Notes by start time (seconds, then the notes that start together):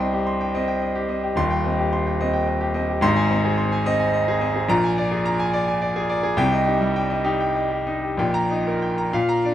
Already playing: C2 G5 C6
0.00 C4 D#5
0.13 G4
0.27 C6
0.41 G5
0.54 C4 D#5
0.68 G5
0.82 D#5
0.95 G4
1.09 C4 D#5
1.23 G4
1.36 D#1 D#2 C6
1.50 G5
1.64 C4 D#5
1.79 G4
1.93 C6
2.07 G5
2.21 C4 D#5
2.33 G5
2.47 D#5
2.61 G4
2.74 C4 D#5
2.89 G4
3.01 G#1 G#2 C6
3.16 G#5
3.29 C4 D#5
3.45 G#4
3.58 C6
3.72 G#5
3.86 C4 D#5
4.00 G#5
4.14 D#5
4.28 G#4
4.41 C4 D#5
4.56 G#4
4.69 A#1 A#2 A#5
4.84 G#5
4.98 D5
5.12 G#4
5.25 A#5
5.39 G#5
5.54 D5
5.68 G#5
5.82 D5
5.96 G#4
6.09 D5
6.23 G#4
6.37 C2 C3 G5
6.52 D#5
6.66 D#4 G4
6.81 G3
6.96 G5
7.10 D#5
7.24 D#4 G4
7.40 G5
7.55 D#5
7.71 G4
7.87 D#4 D#5
8.03 G4
8.17 A#1 A#2 G5
8.34 A#5
8.51 D#4 D#5
8.67 A#4
8.82 G5
8.98 A#5
9.13 A#2 F5
9.29 A#5
9.45 D4 D5